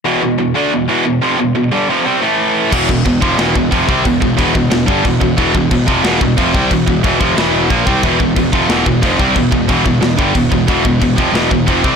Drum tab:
CC |--------|--------|x-x-x-x-|x-x-x-x-|
SD |--------|--------|----o---|----o---|
BD |--------|--------|oooo-ooo|oooo-ooo|

CC |x-x-x-x-|x-x-x-x-|x-x-x-x-|x-x-x-x-|
SD |----o---|----o---|----o---|----o---|
BD |oooo-ooo|oooo--oo|oooo-ooo|oooo-ooo|

CC |x-x-x-x-|
SD |----o---|
BD |oooo-ooo|